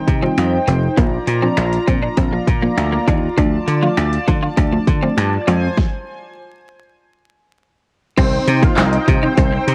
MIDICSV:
0, 0, Header, 1, 8, 480
1, 0, Start_track
1, 0, Key_signature, -3, "minor"
1, 0, Tempo, 600000
1, 780, Time_signature, 4, 2, 24, 8
1, 7798, End_track
2, 0, Start_track
2, 0, Title_t, "Analog synth pad"
2, 0, Program_c, 0, 89
2, 0, Note_on_c, 0, 63, 80
2, 0, Note_on_c, 0, 72, 68
2, 0, Note_on_c, 0, 79, 88
2, 749, Note_off_c, 0, 72, 0
2, 763, Note_off_c, 0, 63, 0
2, 763, Note_off_c, 0, 79, 0
2, 780, Note_on_c, 0, 74, 72
2, 780, Note_on_c, 0, 82, 92
2, 782, Note_on_c, 0, 65, 82
2, 2681, Note_off_c, 0, 82, 0
2, 2698, Note_on_c, 0, 81, 94
2, 4348, Note_off_c, 0, 74, 0
2, 4362, Note_off_c, 0, 81, 0
2, 4382, Note_on_c, 0, 72, 66
2, 4382, Note_on_c, 0, 80, 72
2, 4589, Note_off_c, 0, 65, 0
2, 4618, Note_off_c, 0, 80, 0
2, 4619, Note_off_c, 0, 72, 0
2, 6542, Note_on_c, 0, 79, 97
2, 6543, Note_on_c, 0, 63, 85
2, 6543, Note_on_c, 0, 72, 81
2, 7798, Note_off_c, 0, 63, 0
2, 7798, Note_off_c, 0, 72, 0
2, 7798, Note_off_c, 0, 79, 0
2, 7798, End_track
3, 0, Start_track
3, 0, Title_t, "Supersaw synth"
3, 0, Program_c, 1, 81
3, 6542, Note_on_c, 1, 72, 102
3, 6546, Note_on_c, 1, 60, 75
3, 6642, Note_off_c, 1, 72, 0
3, 6645, Note_off_c, 1, 60, 0
3, 6901, Note_on_c, 1, 77, 81
3, 6908, Note_on_c, 1, 65, 62
3, 7002, Note_off_c, 1, 77, 0
3, 7006, Note_off_c, 1, 65, 0
3, 7021, Note_on_c, 1, 75, 89
3, 7027, Note_on_c, 1, 63, 70
3, 7122, Note_off_c, 1, 75, 0
3, 7125, Note_off_c, 1, 63, 0
3, 7382, Note_on_c, 1, 72, 79
3, 7388, Note_on_c, 1, 60, 60
3, 7482, Note_off_c, 1, 72, 0
3, 7486, Note_off_c, 1, 60, 0
3, 7499, Note_on_c, 1, 72, 89
3, 7505, Note_on_c, 1, 60, 65
3, 7702, Note_off_c, 1, 72, 0
3, 7705, Note_off_c, 1, 60, 0
3, 7739, Note_on_c, 1, 72, 86
3, 7746, Note_on_c, 1, 60, 68
3, 7798, Note_off_c, 1, 60, 0
3, 7798, Note_off_c, 1, 72, 0
3, 7798, End_track
4, 0, Start_track
4, 0, Title_t, "Clean electric guitar"
4, 0, Program_c, 2, 27
4, 180, Note_on_c, 2, 60, 75
4, 277, Note_off_c, 2, 60, 0
4, 541, Note_on_c, 2, 60, 69
4, 638, Note_off_c, 2, 60, 0
4, 780, Note_on_c, 2, 58, 88
4, 878, Note_off_c, 2, 58, 0
4, 1141, Note_on_c, 2, 60, 74
4, 1238, Note_off_c, 2, 60, 0
4, 1500, Note_on_c, 2, 60, 84
4, 1597, Note_off_c, 2, 60, 0
4, 1619, Note_on_c, 2, 62, 76
4, 1717, Note_off_c, 2, 62, 0
4, 1739, Note_on_c, 2, 60, 85
4, 1837, Note_off_c, 2, 60, 0
4, 2099, Note_on_c, 2, 58, 80
4, 2197, Note_off_c, 2, 58, 0
4, 2339, Note_on_c, 2, 58, 80
4, 2437, Note_off_c, 2, 58, 0
4, 2461, Note_on_c, 2, 62, 74
4, 2558, Note_off_c, 2, 62, 0
4, 2699, Note_on_c, 2, 62, 88
4, 2797, Note_off_c, 2, 62, 0
4, 3060, Note_on_c, 2, 65, 72
4, 3157, Note_off_c, 2, 65, 0
4, 3420, Note_on_c, 2, 62, 80
4, 3517, Note_off_c, 2, 62, 0
4, 3540, Note_on_c, 2, 65, 75
4, 3637, Note_off_c, 2, 65, 0
4, 3659, Note_on_c, 2, 62, 82
4, 3757, Note_off_c, 2, 62, 0
4, 4020, Note_on_c, 2, 60, 78
4, 4117, Note_off_c, 2, 60, 0
4, 4379, Note_on_c, 2, 60, 71
4, 4477, Note_off_c, 2, 60, 0
4, 6541, Note_on_c, 2, 60, 92
4, 6638, Note_off_c, 2, 60, 0
4, 6902, Note_on_c, 2, 58, 73
4, 6998, Note_off_c, 2, 58, 0
4, 7021, Note_on_c, 2, 60, 89
4, 7118, Note_off_c, 2, 60, 0
4, 7382, Note_on_c, 2, 63, 83
4, 7478, Note_off_c, 2, 63, 0
4, 7500, Note_on_c, 2, 60, 84
4, 7597, Note_off_c, 2, 60, 0
4, 7798, End_track
5, 0, Start_track
5, 0, Title_t, "Synth pluck"
5, 0, Program_c, 3, 84
5, 0, Note_on_c, 3, 51, 81
5, 0, Note_on_c, 3, 55, 76
5, 0, Note_on_c, 3, 60, 76
5, 0, Note_on_c, 3, 63, 90
5, 90, Note_off_c, 3, 51, 0
5, 91, Note_off_c, 3, 55, 0
5, 91, Note_off_c, 3, 60, 0
5, 92, Note_off_c, 3, 63, 0
5, 178, Note_on_c, 3, 51, 84
5, 180, Note_on_c, 3, 55, 77
5, 181, Note_on_c, 3, 60, 77
5, 183, Note_on_c, 3, 65, 99
5, 555, Note_off_c, 3, 51, 0
5, 555, Note_off_c, 3, 55, 0
5, 556, Note_off_c, 3, 60, 0
5, 557, Note_off_c, 3, 65, 0
5, 780, Note_on_c, 3, 53, 89
5, 782, Note_on_c, 3, 58, 79
5, 782, Note_on_c, 3, 62, 78
5, 783, Note_on_c, 3, 65, 93
5, 1005, Note_off_c, 3, 53, 0
5, 1006, Note_off_c, 3, 58, 0
5, 1006, Note_off_c, 3, 62, 0
5, 1007, Note_off_c, 3, 65, 0
5, 1139, Note_on_c, 3, 53, 82
5, 1139, Note_on_c, 3, 58, 74
5, 1141, Note_on_c, 3, 62, 80
5, 1142, Note_on_c, 3, 65, 95
5, 1365, Note_off_c, 3, 53, 0
5, 1365, Note_off_c, 3, 58, 0
5, 1366, Note_off_c, 3, 62, 0
5, 1367, Note_off_c, 3, 65, 0
5, 1498, Note_on_c, 3, 53, 87
5, 1500, Note_on_c, 3, 58, 79
5, 1501, Note_on_c, 3, 62, 79
5, 1503, Note_on_c, 3, 65, 93
5, 1724, Note_off_c, 3, 53, 0
5, 1725, Note_off_c, 3, 58, 0
5, 1726, Note_off_c, 3, 62, 0
5, 1727, Note_off_c, 3, 65, 0
5, 1859, Note_on_c, 3, 53, 84
5, 1860, Note_on_c, 3, 58, 77
5, 1862, Note_on_c, 3, 62, 78
5, 1862, Note_on_c, 3, 65, 90
5, 2010, Note_off_c, 3, 53, 0
5, 2010, Note_off_c, 3, 58, 0
5, 2011, Note_off_c, 3, 62, 0
5, 2011, Note_off_c, 3, 65, 0
5, 2099, Note_on_c, 3, 53, 86
5, 2101, Note_on_c, 3, 58, 79
5, 2102, Note_on_c, 3, 62, 81
5, 2103, Note_on_c, 3, 65, 94
5, 2475, Note_off_c, 3, 53, 0
5, 2476, Note_off_c, 3, 58, 0
5, 2477, Note_off_c, 3, 62, 0
5, 2477, Note_off_c, 3, 65, 0
5, 2699, Note_on_c, 3, 53, 88
5, 2701, Note_on_c, 3, 57, 81
5, 2701, Note_on_c, 3, 62, 79
5, 2703, Note_on_c, 3, 65, 97
5, 2925, Note_off_c, 3, 53, 0
5, 2926, Note_off_c, 3, 57, 0
5, 2926, Note_off_c, 3, 62, 0
5, 2927, Note_off_c, 3, 65, 0
5, 3058, Note_on_c, 3, 53, 84
5, 3060, Note_on_c, 3, 57, 77
5, 3060, Note_on_c, 3, 62, 77
5, 3062, Note_on_c, 3, 65, 94
5, 3285, Note_off_c, 3, 53, 0
5, 3285, Note_off_c, 3, 57, 0
5, 3286, Note_off_c, 3, 62, 0
5, 3286, Note_off_c, 3, 65, 0
5, 3420, Note_on_c, 3, 53, 83
5, 3421, Note_on_c, 3, 57, 75
5, 3423, Note_on_c, 3, 62, 76
5, 3423, Note_on_c, 3, 65, 93
5, 3645, Note_off_c, 3, 53, 0
5, 3646, Note_off_c, 3, 57, 0
5, 3647, Note_off_c, 3, 62, 0
5, 3647, Note_off_c, 3, 65, 0
5, 3780, Note_on_c, 3, 53, 84
5, 3781, Note_on_c, 3, 57, 77
5, 3782, Note_on_c, 3, 62, 78
5, 3783, Note_on_c, 3, 65, 94
5, 3930, Note_off_c, 3, 53, 0
5, 3931, Note_off_c, 3, 57, 0
5, 3931, Note_off_c, 3, 62, 0
5, 3932, Note_off_c, 3, 65, 0
5, 4018, Note_on_c, 3, 53, 85
5, 4021, Note_on_c, 3, 57, 75
5, 4022, Note_on_c, 3, 62, 77
5, 4024, Note_on_c, 3, 65, 93
5, 4369, Note_off_c, 3, 53, 0
5, 4373, Note_off_c, 3, 65, 0
5, 4378, Note_on_c, 3, 53, 88
5, 4380, Note_off_c, 3, 57, 0
5, 4380, Note_on_c, 3, 56, 85
5, 4381, Note_off_c, 3, 62, 0
5, 4382, Note_on_c, 3, 60, 85
5, 4383, Note_on_c, 3, 65, 100
5, 4571, Note_off_c, 3, 53, 0
5, 4572, Note_off_c, 3, 56, 0
5, 4573, Note_off_c, 3, 60, 0
5, 4573, Note_off_c, 3, 65, 0
5, 6540, Note_on_c, 3, 51, 82
5, 6540, Note_on_c, 3, 55, 73
5, 6542, Note_on_c, 3, 60, 72
5, 6543, Note_on_c, 3, 63, 72
5, 6544, Note_on_c, 3, 67, 86
5, 6991, Note_off_c, 3, 51, 0
5, 6991, Note_off_c, 3, 55, 0
5, 6992, Note_off_c, 3, 60, 0
5, 6992, Note_off_c, 3, 63, 0
5, 6993, Note_off_c, 3, 67, 0
5, 7262, Note_on_c, 3, 51, 80
5, 7262, Note_on_c, 3, 55, 71
5, 7264, Note_on_c, 3, 60, 67
5, 7264, Note_on_c, 3, 63, 71
5, 7265, Note_on_c, 3, 67, 83
5, 7798, Note_off_c, 3, 51, 0
5, 7798, Note_off_c, 3, 55, 0
5, 7798, Note_off_c, 3, 60, 0
5, 7798, Note_off_c, 3, 63, 0
5, 7798, Note_off_c, 3, 67, 0
5, 7798, End_track
6, 0, Start_track
6, 0, Title_t, "Slap bass"
6, 0, Program_c, 4, 36
6, 59, Note_on_c, 4, 48, 87
6, 216, Note_off_c, 4, 48, 0
6, 300, Note_on_c, 4, 41, 93
6, 456, Note_off_c, 4, 41, 0
6, 540, Note_on_c, 4, 29, 90
6, 696, Note_off_c, 4, 29, 0
6, 780, Note_on_c, 4, 34, 101
6, 936, Note_off_c, 4, 34, 0
6, 1019, Note_on_c, 4, 46, 89
6, 1175, Note_off_c, 4, 46, 0
6, 1260, Note_on_c, 4, 34, 103
6, 1416, Note_off_c, 4, 34, 0
6, 1502, Note_on_c, 4, 46, 93
6, 1657, Note_off_c, 4, 46, 0
6, 1739, Note_on_c, 4, 34, 105
6, 1895, Note_off_c, 4, 34, 0
6, 1980, Note_on_c, 4, 46, 93
6, 2136, Note_off_c, 4, 46, 0
6, 2219, Note_on_c, 4, 38, 96
6, 2375, Note_off_c, 4, 38, 0
6, 2460, Note_on_c, 4, 39, 86
6, 2616, Note_off_c, 4, 39, 0
6, 2700, Note_on_c, 4, 38, 104
6, 2856, Note_off_c, 4, 38, 0
6, 2939, Note_on_c, 4, 50, 85
6, 3096, Note_off_c, 4, 50, 0
6, 3179, Note_on_c, 4, 38, 94
6, 3335, Note_off_c, 4, 38, 0
6, 3422, Note_on_c, 4, 50, 96
6, 3577, Note_off_c, 4, 50, 0
6, 3660, Note_on_c, 4, 38, 106
6, 3816, Note_off_c, 4, 38, 0
6, 3900, Note_on_c, 4, 50, 92
6, 4056, Note_off_c, 4, 50, 0
6, 4137, Note_on_c, 4, 43, 87
6, 4294, Note_off_c, 4, 43, 0
6, 4380, Note_on_c, 4, 41, 103
6, 4536, Note_off_c, 4, 41, 0
6, 6541, Note_on_c, 4, 36, 111
6, 6697, Note_off_c, 4, 36, 0
6, 6780, Note_on_c, 4, 48, 108
6, 6936, Note_off_c, 4, 48, 0
6, 7020, Note_on_c, 4, 36, 109
6, 7176, Note_off_c, 4, 36, 0
6, 7262, Note_on_c, 4, 48, 103
6, 7417, Note_off_c, 4, 48, 0
6, 7499, Note_on_c, 4, 36, 108
6, 7656, Note_off_c, 4, 36, 0
6, 7739, Note_on_c, 4, 48, 89
6, 7798, Note_off_c, 4, 48, 0
6, 7798, End_track
7, 0, Start_track
7, 0, Title_t, "Muted clean electric guitar strokes"
7, 1020, Note_on_c, 9, 29, 44
7, 1100, Note_off_c, 9, 29, 0
7, 1261, Note_on_c, 9, 29, 43
7, 1341, Note_off_c, 9, 29, 0
7, 1860, Note_on_c, 9, 29, 43
7, 1940, Note_off_c, 9, 29, 0
7, 2220, Note_on_c, 9, 29, 43
7, 2300, Note_off_c, 9, 29, 0
7, 2940, Note_on_c, 9, 29, 47
7, 3020, Note_off_c, 9, 29, 0
7, 3179, Note_on_c, 9, 29, 43
7, 3259, Note_off_c, 9, 29, 0
7, 3780, Note_on_c, 9, 29, 45
7, 3860, Note_off_c, 9, 29, 0
7, 6781, Note_on_c, 9, 29, 47
7, 6861, Note_off_c, 9, 29, 0
7, 7261, Note_on_c, 9, 29, 50
7, 7341, Note_off_c, 9, 29, 0
7, 7620, Note_on_c, 9, 29, 47
7, 7700, Note_off_c, 9, 29, 0
7, 7798, End_track
8, 0, Start_track
8, 0, Title_t, "Drums"
8, 60, Note_on_c, 9, 36, 83
8, 61, Note_on_c, 9, 42, 79
8, 140, Note_off_c, 9, 36, 0
8, 141, Note_off_c, 9, 42, 0
8, 302, Note_on_c, 9, 42, 88
8, 303, Note_on_c, 9, 26, 121
8, 382, Note_off_c, 9, 42, 0
8, 383, Note_off_c, 9, 26, 0
8, 542, Note_on_c, 9, 42, 80
8, 622, Note_off_c, 9, 42, 0
8, 780, Note_on_c, 9, 36, 113
8, 780, Note_on_c, 9, 42, 84
8, 860, Note_off_c, 9, 36, 0
8, 860, Note_off_c, 9, 42, 0
8, 1020, Note_on_c, 9, 42, 83
8, 1100, Note_off_c, 9, 42, 0
8, 1258, Note_on_c, 9, 26, 108
8, 1261, Note_on_c, 9, 42, 80
8, 1338, Note_off_c, 9, 26, 0
8, 1341, Note_off_c, 9, 42, 0
8, 1383, Note_on_c, 9, 42, 46
8, 1463, Note_off_c, 9, 42, 0
8, 1502, Note_on_c, 9, 36, 85
8, 1502, Note_on_c, 9, 42, 68
8, 1582, Note_off_c, 9, 36, 0
8, 1582, Note_off_c, 9, 42, 0
8, 1737, Note_on_c, 9, 42, 85
8, 1739, Note_on_c, 9, 36, 87
8, 1817, Note_off_c, 9, 42, 0
8, 1819, Note_off_c, 9, 36, 0
8, 1979, Note_on_c, 9, 36, 87
8, 1981, Note_on_c, 9, 42, 82
8, 2059, Note_off_c, 9, 36, 0
8, 2061, Note_off_c, 9, 42, 0
8, 2220, Note_on_c, 9, 42, 88
8, 2221, Note_on_c, 9, 26, 114
8, 2300, Note_off_c, 9, 42, 0
8, 2301, Note_off_c, 9, 26, 0
8, 2460, Note_on_c, 9, 36, 95
8, 2462, Note_on_c, 9, 42, 74
8, 2540, Note_off_c, 9, 36, 0
8, 2542, Note_off_c, 9, 42, 0
8, 2700, Note_on_c, 9, 36, 115
8, 2701, Note_on_c, 9, 42, 86
8, 2780, Note_off_c, 9, 36, 0
8, 2781, Note_off_c, 9, 42, 0
8, 2941, Note_on_c, 9, 42, 80
8, 3021, Note_off_c, 9, 42, 0
8, 3178, Note_on_c, 9, 26, 110
8, 3181, Note_on_c, 9, 42, 84
8, 3258, Note_off_c, 9, 26, 0
8, 3261, Note_off_c, 9, 42, 0
8, 3302, Note_on_c, 9, 42, 45
8, 3382, Note_off_c, 9, 42, 0
8, 3422, Note_on_c, 9, 36, 85
8, 3422, Note_on_c, 9, 42, 67
8, 3502, Note_off_c, 9, 36, 0
8, 3502, Note_off_c, 9, 42, 0
8, 3659, Note_on_c, 9, 36, 85
8, 3659, Note_on_c, 9, 42, 85
8, 3739, Note_off_c, 9, 36, 0
8, 3739, Note_off_c, 9, 42, 0
8, 3899, Note_on_c, 9, 36, 87
8, 3901, Note_on_c, 9, 42, 77
8, 3979, Note_off_c, 9, 36, 0
8, 3981, Note_off_c, 9, 42, 0
8, 4141, Note_on_c, 9, 42, 90
8, 4142, Note_on_c, 9, 26, 115
8, 4221, Note_off_c, 9, 42, 0
8, 4222, Note_off_c, 9, 26, 0
8, 4382, Note_on_c, 9, 42, 75
8, 4462, Note_off_c, 9, 42, 0
8, 4619, Note_on_c, 9, 38, 85
8, 4620, Note_on_c, 9, 36, 98
8, 4699, Note_off_c, 9, 38, 0
8, 4700, Note_off_c, 9, 36, 0
8, 6540, Note_on_c, 9, 49, 103
8, 6541, Note_on_c, 9, 36, 121
8, 6541, Note_on_c, 9, 42, 93
8, 6620, Note_off_c, 9, 49, 0
8, 6621, Note_off_c, 9, 36, 0
8, 6621, Note_off_c, 9, 42, 0
8, 6781, Note_on_c, 9, 42, 86
8, 6861, Note_off_c, 9, 42, 0
8, 6901, Note_on_c, 9, 36, 91
8, 6903, Note_on_c, 9, 42, 54
8, 6981, Note_off_c, 9, 36, 0
8, 6983, Note_off_c, 9, 42, 0
8, 7018, Note_on_c, 9, 39, 121
8, 7021, Note_on_c, 9, 38, 97
8, 7021, Note_on_c, 9, 42, 95
8, 7098, Note_off_c, 9, 39, 0
8, 7101, Note_off_c, 9, 38, 0
8, 7101, Note_off_c, 9, 42, 0
8, 7143, Note_on_c, 9, 42, 49
8, 7223, Note_off_c, 9, 42, 0
8, 7263, Note_on_c, 9, 36, 97
8, 7263, Note_on_c, 9, 42, 75
8, 7343, Note_off_c, 9, 36, 0
8, 7343, Note_off_c, 9, 42, 0
8, 7499, Note_on_c, 9, 42, 92
8, 7500, Note_on_c, 9, 36, 87
8, 7579, Note_off_c, 9, 42, 0
8, 7580, Note_off_c, 9, 36, 0
8, 7742, Note_on_c, 9, 42, 84
8, 7798, Note_off_c, 9, 42, 0
8, 7798, End_track
0, 0, End_of_file